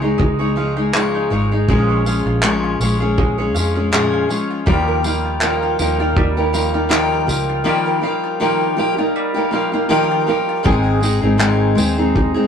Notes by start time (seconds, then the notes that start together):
Already playing: C#2 G#3 C#5 F5
0.02 G#3 D#4 G#4
0.18 C#2 G#3, kick
0.39 G#3 D#4 G#4 C#5
0.56 F3 G#3 D#4 G#4 F5
0.76 G#3 D#4 G#4
0.93 C#3 F3 G#3 D#4 G#4 C#5, clap
1.15 D#4
1.30 G#1 F3 G#3 D#4 G#4 C#5
1.51 G#3 D#4 G#4
1.68 A#1 A#2 F3 G#3 C#4 G#4, kick
1.89 C#5
2.05 F3 G#3 C#4 G#4 F5, tambourine
2.26 A#1 F4
2.43 A#2 F3 G#3 C#4 G#4 C#5, clap
2.64 F4
2.80 A#1 F3 G#3 C#4 G#4 C#5, tambourine
3.00 G#3 C#4 F4 G#4
3.18 G#3, kick
3.38 G#3 C#4 G#4 C#5
3.54 F2 F3 G#3 C#4 G#4 F5, tambourine
3.75 G#3 C#4 F4 G#4
3.92 A#2 F3 G#3 C#4 G#4 C#5, clap
4.13 F4
4.29 F3 G#3 C#4 G#4 C#5, tambourine
4.51 F4
4.66 D#2 D#3 F3 G3 A#3 D#4 G4, kick
4.88 A#4
5.04 F3 A#3 D#4 G4 F5, tambourine
5.25 F4
5.41 D#3 F3 A#3 D#4 G4 A#4, clap
5.63 F4
5.79 D#2 F3 A#3 D#4 G4 A#4, tambourine
5.99 A#3 D#4 F4 G4
6.16 D#2 G3, kick
6.37 A#3 D#4 G4 A#4
6.53 F3 A#3 D#4 G4 F5, tambourine
6.74 A#3 D#4 F4 G4
6.89 D#3 F3 A#3 D#4 G4 A#4, clap
7.12 F4
7.27 C#2 F3 A#3 D#4 G4 A#4, tambourine
7.49 F4
7.64 D#3 F3 G3 A#3 D#4 G4
7.86 A#4
8.02 F3 A#3 D#4 G4 F5
8.24 F4
8.40 D#3 F3 A#3 D#4 G4 A#4
8.61 F4
8.77 F3 A#3 D#4 G4 A#4
8.97 A#3 D#4 F4 G4
9.16 G3
9.34 A#3 D#4 G4 A#4
9.51 F3 A#3 D#4 G4 F5
9.72 A#3 D#4 F4 G4
9.89 D#3 F3 A#3 D#4 G4 A#4
10.11 F4
10.27 F3 A#3 D#4 G4 A#4
10.49 F4
10.63 G#1 G#2 D#3 G#3 C4 D#4 G#4 G#5, kick
11.01 G#3 C4 D#4 G#4, tambourine
11.21 G#1 G#3 C4 D#4 G#4
11.38 G#2 D#3 G#3 C4 D#4 G#4 G#5, clap
11.75 D#2 G#3 C4 D#4 G#4 C5, tambourine
11.97 G#3 C4 D#4 G#4
12.16 D#4, kick
12.34 G#3 C4 D#4 G#4